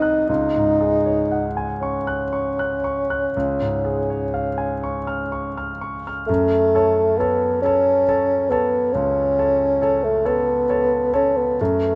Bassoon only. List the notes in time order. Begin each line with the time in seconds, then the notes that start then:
Already playing: D#4
0.29 D#4
1.81 C#4
6.27 A3
7.18 B3
7.62 C#4
8.50 B3
8.93 C#4
10.04 A3
10.26 B3
11.15 C#4
11.37 B3
11.62 A3